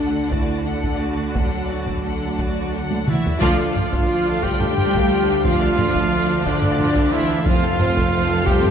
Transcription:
Already playing: double bass section D2, cello section D3, french horn section D4, viola section D4, violin section A4 F#5
0.30 french horn section E4, violin section F#4 D5, viola section F#4, taiko
0.65 french horn section D4, viola section D4, violin section A4 F#5
0.84 taiko
0.99 violin section F#4 D5, viola section F#4
1.34 french horn section F#3, viola section D4, violin section A4 F#5, taiko
1.69 violin section F#4 D5, viola section F#4
1.87 taiko
2.03 viola section D4, violin section A4 F#5
2.39 viola section F#4, violin section F#4 D5, taiko
2.72 viola section D4, violin section A4 F#5
2.91 taiko high
3.06 cello section E3, french horn section E4, trumpet E4, viola section F#4, violin section F#4 D5 E5, taiko mid
3.26 taiko low
3.39 tuba D2, double bass section D2, timpani D3, cello section F3, viola section F3 F4, string section A3 D4 A4 D5, french horn section F4, violin section F4 D5 F5, taiko
3.44 trumpet F4
3.58 viola section A3 D4, violin section A4 F5
3.75 viola section F3 F4, violin section F4 D5, taiko low-mid
3.92 viola section A3 D4, violin section A4 F5, taiko
4.08 viola section F3 F4, violin section F4 D5
4.25 viola section A3 D4, violin section A4 F5
4.43 viola section F3 F4, cello section G3, violin section F4 D5 G5, french horn section G4, trumpet G4, taiko
4.60 viola section A3 D4, violin section A4 F5, taiko low-mid
4.76 viola section F3 F4, violin section F4 D5, taiko low-mid
4.94 viola section A3 D4, violin section A4 F5, taiko
5.11 viola section F3 F4, violin section F4 D5
5.26 viola section A3 D4, violin section A4 F5
5.43 viola section F3 F4, cello section F3, trumpet F4, french horn section F4, violin section F4 F5, taiko
5.47 violin section D5
5.60 viola section A3 D4, violin section A4 F5
5.77 viola section F3 F4, violin section F4, taiko low-mid
5.81 violin section D5
5.93 viola section A3 D4, taiko
5.98 violin section A4 F5
6.10 viola section F3 F4, violin section F4 D5
6.26 viola section A3 D4
6.31 violin section A4 F5
6.43 cello section D3, viola section F3 F4, trumpet D4, french horn section D4, violin section F4 D5, taiko
6.48 violin section D5
6.60 viola section A3 D4, violin section A4 F5, taiko low-mid
6.77 viola section F3 F4, violin section D5, taiko low-mid
6.81 violin section F4
6.95 viola section A3 D4, violin section A4 F5, taiko
7.11 cello section E3, viola section F3 F4, trumpet E4, french horn section E4, violin section F4 D5 E5
7.28 viola section A3 D4, violin section A4 F5
7.44 tuba F1, double bass section F2, cello section F3, string section A3 F4 A4 F5, viola section C4 F4, french horn section F4, trumpet F4, violin section C5 F5, taiko
7.61 viola section A3 C4
7.65 violin section A4 F5
7.77 viola section C4 F4, violin section C5, taiko low-mid
7.94 viola section A3 C4, taiko
7.98 violin section A4 F5
8.12 viola section C4 F4
8.16 violin section C5
8.29 viola section A3 C4, violin section A4 F5
8.45 cello section G3, viola section C4 F4, french horn section G4, trumpet G4, violin section G5, taiko
8.50 violin section C5
8.63 viola section A3 C4, violin section A4 F5, taiko low-mid

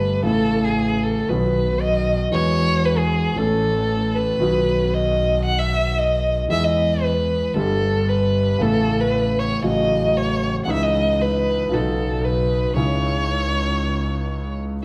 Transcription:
Already playing: grand piano G1 G2 D3 G3 A3 G4, double bass G1, violin B4
0.23 grand piano A1 A2 C#3 E3 A3 E4, double bass A1, violin A4
0.64 violin G#4
1.03 violin A4
1.28 grand piano B1 B2 D#3 F#3 B3 F#4, double bass B1, violin B4
1.81 violin D#5
2.31 grand piano E2 E3 G#3 B3 F#4, double bass E2, violin C#5
2.85 violin B4
2.98 violin G#4
3.35 grand piano A1 A2 E3 A3 C#4 A4, double bass A1, violin A4
4.16 violin B4
4.39 double bass B1, grand piano B1 B2 D#3 F#3 B3
4.43 grand piano F#4
4.94 violin D#5
5.45 violin F#5
5.59 violin E5
5.98 violin D#5
6.49 grand piano E2 E3 G#3 B3 G#4, double bass E2, violin E5
6.64 violin D#5
7.03 violin B4
7.54 grand piano G1 G2 D3 G3 B3 G4, double bass G1, violin A4
8.09 violin B4
8.59 double bass A1, grand piano A1 A2 C#3 A3 B3 E4, violin A4
9.00 violin B4
9.39 violin C#5
9.62 double bass A1, grand piano A1 A2 C#3 F#3 A3 F#4, violin D#5
10.17 violin C#5
10.65 grand piano C#2 C#3 E3 G#3, violin F#5
10.69 double bass C#2, grand piano D#4, violin E5
10.83 violin D#5
11.21 violin B4
11.69 grand piano B1 B2 C#3 F#3 B3, double bass B1
11.73 grand piano D#4, violin A4
12.25 violin B4
12.74 double bass C#2, grand piano C#2 C#3 G#3 C#4 D#4, violin C#5
12.79 grand piano E4

